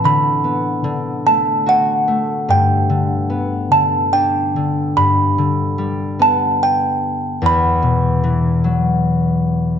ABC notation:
X:1
M:3/4
L:1/8
Q:1/4=73
K:G
V:1 name="Music box"
b3 a f2 | g3 a g2 | b3 a g2 | b4- b z |]
V:2 name="Harp" clef=bass
D, B, D, A, F A, | G,, D, B, D, D D, | G,, D, G, B,3 | E,, B,, E, F,3 |]